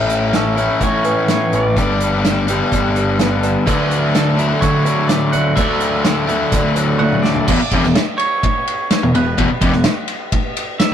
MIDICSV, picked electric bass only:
0, 0, Header, 1, 3, 480
1, 0, Start_track
1, 0, Tempo, 475813
1, 1779, Time_signature, 4, 2, 24, 8
1, 11035, End_track
2, 0, Start_track
2, 0, Title_t, "Picked electric bass"
2, 0, Program_c, 0, 34
2, 0, Note_on_c, 0, 33, 93
2, 684, Note_off_c, 0, 33, 0
2, 818, Note_on_c, 0, 45, 83
2, 1025, Note_off_c, 0, 45, 0
2, 1539, Note_on_c, 0, 33, 85
2, 1747, Note_off_c, 0, 33, 0
2, 1782, Note_on_c, 0, 31, 97
2, 2613, Note_off_c, 0, 31, 0
2, 2744, Note_on_c, 0, 31, 95
2, 3575, Note_off_c, 0, 31, 0
2, 3705, Note_on_c, 0, 38, 103
2, 4536, Note_off_c, 0, 38, 0
2, 4661, Note_on_c, 0, 50, 94
2, 4870, Note_off_c, 0, 50, 0
2, 5390, Note_on_c, 0, 38, 78
2, 5596, Note_off_c, 0, 38, 0
2, 5622, Note_on_c, 0, 38, 110
2, 6453, Note_off_c, 0, 38, 0
2, 6580, Note_on_c, 0, 38, 98
2, 7411, Note_off_c, 0, 38, 0
2, 7548, Note_on_c, 0, 28, 87
2, 7657, Note_off_c, 0, 28, 0
2, 7785, Note_on_c, 0, 29, 99
2, 7895, Note_off_c, 0, 29, 0
2, 7913, Note_on_c, 0, 28, 79
2, 8019, Note_off_c, 0, 28, 0
2, 9107, Note_on_c, 0, 28, 75
2, 9215, Note_off_c, 0, 28, 0
2, 9223, Note_on_c, 0, 28, 85
2, 9444, Note_off_c, 0, 28, 0
2, 9464, Note_on_c, 0, 28, 86
2, 9573, Note_off_c, 0, 28, 0
2, 9701, Note_on_c, 0, 29, 97
2, 9811, Note_off_c, 0, 29, 0
2, 9817, Note_on_c, 0, 28, 78
2, 9929, Note_off_c, 0, 28, 0
2, 11035, End_track
3, 0, Start_track
3, 0, Title_t, "Muted picked electric bass strokes"
3, 7663, Note_on_c, 9, 29, 39
3, 7764, Note_off_c, 9, 29, 0
3, 9584, Note_on_c, 9, 29, 41
3, 9685, Note_off_c, 9, 29, 0
3, 11035, End_track
0, 0, End_of_file